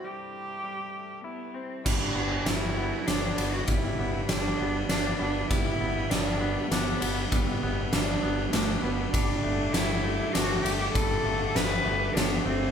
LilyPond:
<<
  \new Staff \with { instrumentName = "String section" } { \time 3/4 \key g \major \tempo 4 = 99 << { <g, c a>2. | <g' b''>2.~ | <g' b''>2.~ | <g' b''>2.~ |
<g' b''>2. | <a' d'''>2.~ | <a' d'''>2. | } \\ { e2. | d''2.~ | d''2. | e''2.~ |
e''2. | fis''2.~ | fis''2. | } >> }
  \new Staff \with { instrumentName = "Cello" } { \time 3/4 \key g \major g'2 b8 c'8 | d'4 e'4 d'8. fis'16 | e'4 d'4 d'8 d'8 | e'4 d'4 b4 |
b4 d'4 a8 b8 | d'4 e'4 fis'8 g'8 | a'4 b'4 b8 c'8 | }
  \new Staff \with { instrumentName = "Clean electric guitar" } { \time 3/4 \key g \major <g c' e'>4 g4 e'8 c'8 | g8 b8 g8 b8 d'8 b8 | g8 b8 g8 b8 d'8 b8 | g8 b8 g8 b8 d'8 b8 |
g8 b8 g8 b8 d'8 b8 | g8 a8 g8 a8 d'8 a8 | g8 a8 g8 a8 d'8 a8 | }
  \new Staff \with { instrumentName = "Fingered electric bass" } { \clef bass \time 3/4 \key g \major r2. | g,,8 g,,8 g,,4 g,,8 g,,8 | g,,8 g,,8 g,,8 g,,8 g,,8 g,,8 | g,,8 g,,8 g,,4 g,,8 g,,8 |
g,,8 g,,8 g,,8 g,,8 g,,8 g,,8 | g,,8 g,,8 g,,4 g,,8 g,,8 | g,,8 g,,8 g,,8 g,,8 g,,8 g,,8 | }
  \new DrumStaff \with { instrumentName = "Drums" } \drummode { \time 3/4 r4 r4 r4 | <cymc bd>4 <cymr sn>4 <cymr sn>8 cymr8 | <bd cymr>4 <cymr sn>4 <cymr sn>4 | <bd cymr>4 <cymr sn>4 <cymr sn>8 cymr8 |
<bd cymr>4 <cymr sn>4 <cymr sn>4 | <bd cymr>4 <cymr sn>4 <cymr sn>8 cymr8 | <bd cymr>4 <cymr sn>4 <cymr sn>4 | }
>>